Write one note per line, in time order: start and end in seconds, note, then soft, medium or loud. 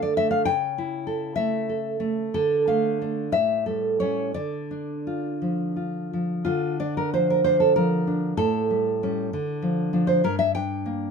0.00 0.45 D3 medium
0.00 0.17 A3 soft
0.00 0.48 A4 soft
0.00 0.17 D5 medium
0.17 0.48 A3 soft
0.17 0.30 E5 medium
0.31 0.45 F5 medium
0.45 2.29 C#3 medium
0.45 1.33 G5 loud
0.78 1.69 E4 soft
1.07 1.68 A4 soft
1.36 1.99 A3 soft
1.36 2.29 E5 medium
1.69 2.33 A4 soft
2.00 2.34 A3 medium
2.34 3.30 D3 medium
2.34 2.67 A4 medium
2.68 3.00 A3 soft
2.68 3.30 F5 medium
3.02 3.30 A3 soft
3.02 3.30 D4 soft
3.32 4.31 A2 medium
3.32 3.64 E5 medium
3.66 4.00 G3 soft
3.66 3.98 A4 medium
4.00 4.32 G3 soft
4.00 4.32 C#4 soft
4.00 4.33 C#5 medium
4.34 6.43 D3 medium
4.34 6.07 D5 medium
4.71 5.76 D4 soft
5.07 5.75 F4 soft
5.42 6.12 F3 soft
5.76 6.43 F4 soft
6.13 6.47 F3 soft
6.45 8.33 D3 medium
6.45 6.77 F4 medium
6.80 7.44 D4 soft
6.80 6.96 D5 medium
6.97 7.12 A#4 medium
7.14 7.75 F3 soft
7.14 7.28 C5 medium
7.30 7.44 A#4 medium
7.44 8.06 D4 soft
7.44 7.60 C5 medium
7.60 7.75 A4 medium
7.76 8.37 F3 soft
7.76 8.35 A#4 medium
8.07 8.38 D4 soft
8.37 9.29 A2 medium
8.37 10.04 A4 medium
8.70 9.02 G3 soft
9.03 9.30 G3 soft
9.03 9.30 C#4 soft
9.33 10.22 D3 medium
9.62 9.92 F3 soft
9.93 10.21 F3 soft
9.93 10.21 D4 soft
10.07 10.23 C5 medium
10.24 11.11 G2 medium
10.24 10.38 A#4 loud
10.39 10.54 E5 medium
10.55 11.11 D4 soft
10.55 11.11 G5 medium
10.86 11.11 A#3 soft